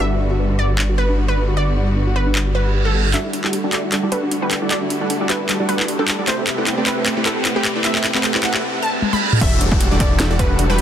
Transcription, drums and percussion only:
0.79 clap medium
2.35 clap medium
3.14 clap soft
3.14 closed hi-hat medium
3.33 closed hi-hat medium
3.44 clap soft
3.53 closed hi-hat medium
3.73 clap soft
3.73 closed hi-hat medium
3.92 clap medium
3.92 closed hi-hat medium
4.12 closed hi-hat medium
4.31 closed hi-hat medium
4.51 clap medium
4.51 closed hi-hat medium
4.71 clap medium
4.71 closed hi-hat medium
4.90 closed hi-hat medium
5.10 closed hi-hat medium
5.30 clap medium
5.30 closed hi-hat medium
5.49 clap medium
5.49 closed hi-hat medium
5.69 closed hi-hat medium
5.80 clap medium
5.88 closed hi-hat medium
6.08 clap medium
6.08 closed hi-hat medium
6.28 clap medium
6.28 closed hi-hat medium
6.47 clap medium
6.47 closed hi-hat medium
6.67 clap medium
6.67 closed hi-hat medium
6.86 clap medium
6.86 closed hi-hat medium
7.06 clap medium
7.06 closed hi-hat medium
7.26 clap medium
7.26 closed hi-hat medium
7.45 clap medium
7.45 closed hi-hat medium
7.65 clap medium
7.65 closed hi-hat medium
7.84 clap medium
7.84 closed hi-hat medium
7.95 clap medium
8.04 clap medium
8.04 closed hi-hat medium
8.15 clap medium
8.24 clap medium
8.24 closed hi-hat medium
8.35 clap medium
8.43 clap loud
8.43 closed hi-hat medium
8.54 clap medium
9.02 high tom medium
9.13 high tom medium
9.33 mid tom medium
9.41 kick loud
9.41 closed hi-hat medium
9.41 crash loud
9.61 closed hi-hat medium
9.72 kick loud
9.81 closed hi-hat medium
10.00 kick loud
10.00 closed hi-hat medium
10.20 snare loud
10.20 closed hi-hat medium
10.39 kick medium
10.39 closed hi-hat medium
10.59 closed hi-hat medium
10.78 closed hi-hat medium

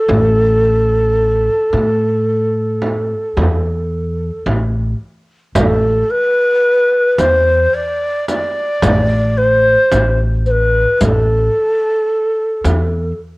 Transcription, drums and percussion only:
0.08 frame drum medium
1.73 frame drum medium
2.82 frame drum medium
3.37 frame drum medium
4.47 frame drum medium
5.55 riq medium
5.55 frame drum medium
7.18 riq soft
7.18 frame drum medium
8.28 riq soft
8.28 frame drum medium
8.82 riq medium
8.82 frame drum medium
9.92 riq soft
9.92 frame drum medium
10.46 riq soft
11.01 riq medium
11.01 frame drum medium
12.64 riq soft
12.64 frame drum medium

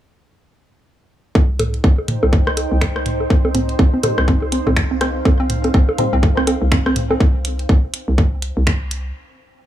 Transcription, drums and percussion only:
1.35 kick loud
1.35 low bongo soft
1.59 closed hi-hat medium
1.59 mid tom medium
1.59 low bongo medium
1.74 closed hi-hat soft
1.84 kick loud
1.98 low bongo soft
2.08 closed hi-hat medium
2.08 mid tom medium
2.23 low bongo medium
2.33 kick loud
2.47 cross-stick medium
2.57 closed hi-hat medium
2.57 low bongo soft
2.81 finger snap loud
2.81 kick loud
2.81 low bongo medium
2.96 cross-stick medium
3.06 closed hi-hat medium
3.06 mid tom medium
3.20 low bongo soft
3.30 kick loud
3.45 low bongo medium
3.55 closed hi-hat medium
3.55 mid tom medium
3.69 closed hi-hat soft
3.79 kick loud
3.79 low bongo soft
4.03 closed hi-hat medium
4.03 mid tom medium
4.03 low bongo medium
4.18 cross-stick medium
4.28 kick loud
4.42 low bongo soft
4.52 closed hi-hat medium
4.67 mid tom medium
4.67 low bongo medium
4.77 finger snap loud
4.77 kick loud
5.01 cross-stick medium
5.01 closed hi-hat medium
5.01 low bongo soft
5.25 kick loud
5.25 low bongo medium
5.50 closed hi-hat medium
5.50 mid tom medium
5.64 closed hi-hat soft
5.64 low bongo soft
5.74 kick loud
5.89 low bongo medium
5.98 closed hi-hat medium
5.98 mid tom medium
6.23 kick loud
6.23 low bongo soft
6.37 cross-stick medium
6.47 closed hi-hat medium
6.47 low bongo medium
6.72 finger snap loud
6.72 kick loud
6.86 cross-stick medium
6.86 low bongo soft
6.96 closed hi-hat loud
6.96 mid tom medium
7.11 low bongo medium
7.20 kick loud
7.45 closed hi-hat loud
7.59 closed hi-hat soft
7.69 kick loud
7.94 closed hi-hat medium
8.18 kick loud
8.42 closed hi-hat medium
8.67 finger snap loud
8.67 kick loud
8.91 closed hi-hat loud

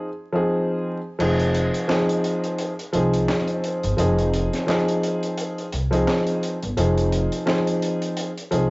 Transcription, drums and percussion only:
1.20 crash medium
1.39 closed hi-hat medium
1.54 closed hi-hat medium
1.74 closed hi-hat medium
1.90 snare loud
1.90 clap medium
2.09 closed hi-hat medium
2.24 closed hi-hat medium
2.44 closed hi-hat medium
2.59 closed hi-hat medium
2.79 closed hi-hat medium
2.93 closed hi-hat medium
3.14 closed hi-hat medium
3.29 snare loud
3.29 clap medium
3.48 closed hi-hat medium
3.64 closed hi-hat medium
3.83 closed hi-hat medium
3.98 closed hi-hat loud
4.19 closed hi-hat soft
4.34 closed hi-hat medium
4.53 snare soft
4.53 closed hi-hat medium
4.69 snare loud
4.69 clap medium
4.88 closed hi-hat medium
5.03 closed hi-hat medium
5.23 closed hi-hat medium
5.38 closed hi-hat medium
5.58 closed hi-hat medium
5.73 closed hi-hat medium
5.93 closed hi-hat medium
6.08 snare loud
6.08 clap medium
6.27 closed hi-hat medium
6.43 closed hi-hat medium
6.63 closed hi-hat medium
6.78 closed hi-hat loud
6.98 closed hi-hat soft
7.13 closed hi-hat medium
7.32 closed hi-hat medium
7.48 snare loud
7.48 clap medium
7.67 closed hi-hat medium
7.82 closed hi-hat medium
8.02 closed hi-hat medium
8.17 closed hi-hat medium
8.37 closed hi-hat medium
8.52 closed hi-hat medium

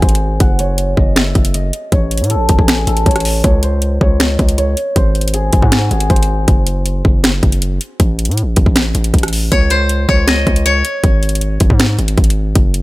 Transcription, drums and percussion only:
0.02 kick loud
0.02 closed hi-hat soft
0.09 closed hi-hat medium
0.15 closed hi-hat medium
0.40 kick loud
0.40 closed hi-hat medium
0.59 closed hi-hat medium
0.78 closed hi-hat medium
0.97 kick medium
1.16 finger snap loud
1.16 snare loud
1.16 closed hi-hat medium
1.35 kick medium
1.35 closed hi-hat soft
1.45 closed hi-hat medium
1.54 closed hi-hat medium
1.73 closed hi-hat medium
1.92 kick loud
1.92 closed hi-hat medium
2.11 closed hi-hat medium
2.18 closed hi-hat medium
2.24 closed hi-hat soft
2.30 closed hi-hat medium
2.49 kick medium
2.49 closed hi-hat medium
2.59 kick medium
2.68 finger snap loud
2.68 snare loud
2.68 closed hi-hat medium
2.87 closed hi-hat medium
2.97 closed hi-hat medium
3.06 kick loud
3.06 closed hi-hat medium
3.11 closed hi-hat medium
3.16 cross-stick medium
3.16 closed hi-hat medium
3.20 closed hi-hat medium
3.25 open hi-hat medium
3.44 kick loud
3.44 closed hi-hat medium
3.63 closed hi-hat medium
3.82 closed hi-hat medium
4.01 kick medium
4.20 finger snap loud
4.20 snare loud
4.20 closed hi-hat medium
4.39 kick medium
4.39 closed hi-hat soft
4.49 closed hi-hat medium
4.58 closed hi-hat medium
4.77 closed hi-hat medium
4.96 kick loud
4.96 closed hi-hat medium
5.15 closed hi-hat soft
5.21 closed hi-hat medium
5.28 closed hi-hat medium
5.34 closed hi-hat medium
5.53 kick medium
5.53 closed hi-hat medium
5.62 kick medium
5.72 finger snap loud
5.72 snare loud
5.72 closed hi-hat medium
5.91 closed hi-hat soft
6.00 closed hi-hat medium
6.10 kick loud
6.10 closed hi-hat soft
6.16 closed hi-hat medium
6.23 closed hi-hat medium
6.48 kick loud
6.48 closed hi-hat medium
6.67 closed hi-hat medium
6.86 closed hi-hat medium
7.05 kick medium
7.24 finger snap loud
7.24 snare loud
7.24 closed hi-hat medium
7.43 kick medium
7.43 closed hi-hat soft
7.52 closed hi-hat medium
7.62 closed hi-hat medium
7.81 closed hi-hat medium
8.00 kick loud
8.00 closed hi-hat medium
8.19 closed hi-hat medium
8.25 closed hi-hat medium
8.31 closed hi-hat soft
8.37 closed hi-hat medium
8.56 kick medium
8.56 closed hi-hat medium
8.66 kick medium
8.76 finger snap loud
8.76 snare loud
8.76 closed hi-hat medium
8.95 closed hi-hat medium
9.04 closed hi-hat medium
9.14 kick loud
9.14 closed hi-hat medium
9.19 closed hi-hat medium
9.23 cross-stick medium
9.23 closed hi-hat medium
9.28 closed hi-hat medium
9.33 open hi-hat medium
9.52 kick loud
9.52 closed hi-hat medium
9.70 closed hi-hat medium
9.89 closed hi-hat medium
10.09 kick medium
10.28 finger snap loud
10.28 snare loud
10.28 closed hi-hat medium
10.47 kick medium
10.47 closed hi-hat soft
10.56 closed hi-hat medium
10.66 closed hi-hat medium
10.85 closed hi-hat medium
11.04 kick loud
11.04 closed hi-hat medium
11.23 closed hi-hat soft
11.29 closed hi-hat medium
11.35 closed hi-hat medium
11.41 closed hi-hat medium
11.60 kick medium
11.60 closed hi-hat medium
11.70 kick medium
11.80 finger snap loud
11.80 snare loud
11.80 closed hi-hat medium
11.99 closed hi-hat soft
12.08 closed hi-hat medium
12.18 kick loud
12.18 closed hi-hat soft
12.24 closed hi-hat medium
12.30 closed hi-hat medium
12.55 kick loud
12.55 closed hi-hat medium
12.74 closed hi-hat medium

